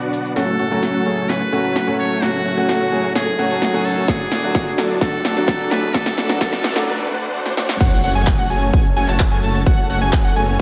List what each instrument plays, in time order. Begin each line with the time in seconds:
Already playing: analog synth pad B2 F#3 D4, grand piano F#3 B3 D4 F#4, supersaw synth B3 D4 F#4 D5 F#5
0.02 shaker
0.13 open hi-hat, shaker
0.25 shaker
0.36 detuned saw bass F#1, grand piano F#3 A3 C#4 F#4, analog synth pad F#3 A3 C#4, supersaw synth A3 C#4 F#4 C#5 F#5, muted trumpet A4, snare, closed hi-hat, riser
0.48 closed hi-hat
0.59 detuned saw bass F#1, supersaw synth A3 C#4 F#4 C#5 F#5, open hi-hat
0.71 detuned saw bass F#1, grand piano F#3 A3 C#4 F#4, supersaw synth A3 C#4 F#4 C#5 G#5, closed hi-hat
0.83 snare, closed hi-hat
0.94 detuned saw bass F#1, supersaw synth A3 C#4 F#4 C#5 F#5, closed hi-hat
1.05 detuned saw bass F#1, grand piano F#3 A3 C#4 G#4, supersaw synth A3 C#4 F#4 C#5 G#5, open hi-hat
1.18 closed hi-hat
1.29 detuned saw bass F#1, supersaw synth A3 C#4 F#4 C#5 G#5, muted trumpet B4, snare, closed hi-hat
1.41 closed hi-hat
1.52 detuned saw bass F#1, grand piano F#3 A3 C#4 F#4, supersaw synth A3 C#4 F#4 C#5 G#5, open hi-hat
1.64 detuned saw bass F#1, supersaw synth A3 C#4 F#4 C#5 A5, closed hi-hat
1.76 snare, closed hi-hat
1.87 detuned saw bass F#1, grand piano F#3 A3 C#4 F#4, supersaw synth A3 C#4 F#4 C#5 G#5, closed hi-hat
1.99 detuned saw bass F#1, supersaw synth A3 C#4 F#4 C#5 A5, muted trumpet C#5, open hi-hat
2.11 closed hi-hat
2.22 detuned saw bass F#1, grand piano F#3 A3 C#4 F#4, supersaw synth A3 C#4 F#4 C#5 F#5, muted trumpet F#4, snare, closed hi-hat
2.34 closed hi-hat
2.45 detuned saw bass F#1, supersaw synth A3 C#4 F#4 C#5 F#5, open hi-hat
2.57 detuned saw bass F#1, grand piano F#3 A3 C#4 F#4, supersaw synth A3 C#4 F#4 C#5 G#5, closed hi-hat
2.69 snare, closed hi-hat
2.80 detuned saw bass F#1, supersaw synth A3 C#4 F#4 C#5 F#5, closed hi-hat
2.92 detuned saw bass F#1, grand piano F#3 A3 C#4 G#4, supersaw synth A3 C#4 F#4 C#5 G#5, open hi-hat
3.04 closed hi-hat
3.15 detuned saw bass F#1, supersaw synth A3 C#4 F#4 C#5 G#5, muted trumpet G#4, snare, closed hi-hat
3.27 closed hi-hat
3.38 detuned saw bass F#1, grand piano F#3 A3 C#4 F#4, supersaw synth A3 C#4 F#4 C#5 G#5, open hi-hat
3.50 detuned saw bass F#1, supersaw synth A3 C#4 F#4 C#5 A5, closed hi-hat
3.62 snare, closed hi-hat
3.73 detuned saw bass F#1, grand piano F#3 A3 C#4 F#4, supersaw synth A3 C#4 F#4 C#5 G#5, closed hi-hat
3.85 detuned saw bass F#2, supersaw synth A3 C#4 F#4 C#5 A5, muted trumpet A4, open hi-hat
3.97 closed hi-hat
4.08 detuned saw bass F#1, grand piano F#3 A3 F#4, analog synth pad D4, muted trumpet G#4, kick, snare, closed hi-hat
4.20 closed hi-hat
4.32 detuned saw bass F#1, supersaw synth A3 D4 F#4 D5 F#5, snare, open hi-hat
4.43 detuned saw bass F#1, grand piano F#3 A3 D4 F#4, supersaw synth A3 D4 F#4 D5 A5, closed hi-hat
4.55 kick, snare, closed hi-hat
4.66 detuned saw bass F#1, supersaw synth A3 D4 F#4 D5 F#5, closed hi-hat
4.78 detuned saw bass F#1, grand piano F#3 A3 D4 A4, supersaw synth A3 D4 F#4 D5 A5, snare, open hi-hat
4.90 closed hi-hat
5.01 detuned saw bass F#1, grand piano F#3 A3 D4 F#4, supersaw synth A3 D4 F#4 F#5, muted trumpet A4, kick, snare, closed hi-hat
5.13 closed hi-hat
5.25 detuned saw bass F#1, supersaw synth A3 D4 F#4 D5 F#5, snare, open hi-hat
5.36 detuned saw bass F#1, grand piano F#3 A3 D4 F#4, supersaw synth A3 D4 F#4 D5 A5, closed hi-hat
5.48 kick, snare, closed hi-hat
5.59 detuned saw bass F#1, supersaw synth A3 D4 F#4 D5 F#5, closed hi-hat
5.71 detuned saw bass F#1, grand piano F#3 A3 D4 A4, supersaw synth A3 D4 F#4 D5 A5, muted trumpet B4, snare, open hi-hat
5.83 closed hi-hat
5.94 detuned saw bass F#1, grand piano F#3 A3 D4 F#4, supersaw synth A3 D4 F#4 D5, muted trumpet A4, analog synth pad B4, kick, snare, closed hi-hat, noise sweep
6.06 snare, closed hi-hat
6.17 detuned saw bass F#1, supersaw synth A3 D4 F#4 D5 F#5, snare, open hi-hat
6.29 detuned saw bass F#1, grand piano F#3 A3 D4 F#4, supersaw synth A3 D4 F#4 D5 A5, snare, closed hi-hat
6.40 detuned saw bass F#1, grand piano F#3 A3 D4 F#4, supersaw synth A3 D4 F#4 D5 F#5, kick, snare, closed hi-hat
6.53 snare, closed hi-hat
6.64 detuned saw bass F#1, supersaw synth A3 D4 F#4 D5 F#5, snare, open hi-hat
6.75 detuned saw bass F#1, grand piano F#3 A3 D4 F#4, supersaw synth A3 D4 F#4 D5 A5, snare, closed hi-hat
6.87 supersaw synth A3 D4 F#4 D5 F#5
7.11 supersaw synth A3 D4 F#4 D5 F#5
7.34 supersaw synth A3 D4 F#4 D5 F#5
7.46 snare
7.57 supersaw synth A3 D4 F#4 D5 F#5, snare
7.69 snare
7.80 detuned saw bass F#1, analog synth pad F#3 C#4 A4, supersaw synth A3 C#4 F#4 C#5 F#5, digital synth lead F#5, kick, closed hi-hat, crash, impact, shaker
7.92 closed hi-hat
8.04 detuned saw bass F#1, supersaw synth A3 C#4 F#4 C#5 F#5, digital synth lead F#5, open hi-hat, ride, shaker
8.15 detuned saw bass F#1, supersaw synth A3 C#4 F#4 C#5 G#5, digital synth lead G#5, closed hi-hat, shaker
8.27 kick, clap, closed hi-hat, shaker
8.38 detuned saw bass F#1, supersaw synth A3 C#4 F#4 C#5 F#5, digital synth lead F#5, closed hi-hat, shaker
8.50 detuned saw bass F#1, supersaw synth A3 C#4 F#4 C#5 G#5, digital synth lead G#5, open hi-hat, ride, shaker
8.62 closed hi-hat, shaker
8.73 detuned saw bass F#1, supersaw synth A3 C#4 F#4, digital synth lead G#5, kick, closed hi-hat, shaker
8.85 closed hi-hat, shaker
8.97 detuned saw bass F#1, supersaw synth A3 C#4 F#4 C#5 G#5, digital synth lead G#5, open hi-hat, ride, shaker
9.08 detuned saw bass F#1, supersaw synth A3 C#4 F#4 C#5 A5, digital synth lead A5, clap, closed hi-hat, shaker
9.20 kick, clap, closed hi-hat, shaker
9.31 detuned saw bass F#1, supersaw synth A3 C#4 F#4 C#5 G#5, digital synth lead G#5, closed hi-hat, shaker
9.43 detuned saw bass F#1, supersaw synth A3 C#4 F#4 C#5 A5, digital synth lead A5, open hi-hat, ride, shaker
9.55 closed hi-hat, shaker
9.66 detuned saw bass F#1, supersaw synth A3 F#4 C#5, analog synth pad B3, digital synth lead F#5, kick, closed hi-hat, shaker
9.78 closed hi-hat
9.90 detuned saw bass F#1, supersaw synth A3 C#4 F#4 C#5 F#5, digital synth lead F#5, open hi-hat, ride, shaker
10.01 detuned saw bass F#1, supersaw synth A3 C#4 F#4 C#5 G#5, digital synth lead G#5, closed hi-hat, shaker
10.13 kick, clap, closed hi-hat, shaker
10.24 detuned saw bass F#1, supersaw synth A3 C#4 F#4 C#5 F#5, digital synth lead F#5, closed hi-hat, shaker
10.36 detuned saw bass F#1, supersaw synth A3 C#4 F#4 C#5 G#5, digital synth lead G#5, open hi-hat, ride, shaker
10.48 closed hi-hat, shaker